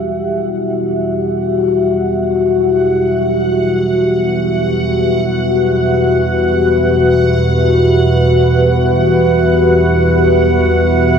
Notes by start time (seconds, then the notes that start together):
Already playing: E2 B2 E4 F#4 G4 E5 F#5
0.40 B4